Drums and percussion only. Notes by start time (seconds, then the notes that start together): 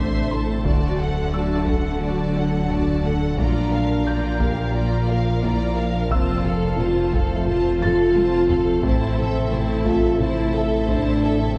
0.65 taiko
1.67 taiko
2.70 taiko
3.38 taiko
4.40 taiko
5.43 taiko
6.11 taiko
6.45 taiko mid
6.80 taiko mid
7.13 taiko
7.48 taiko mid
7.81 taiko low-mid
8.16 taiko high
8.50 taiko low
8.84 taiko
9.18 taiko mid
9.52 taiko mid
9.86 taiko
10.20 taiko mid
10.89 taiko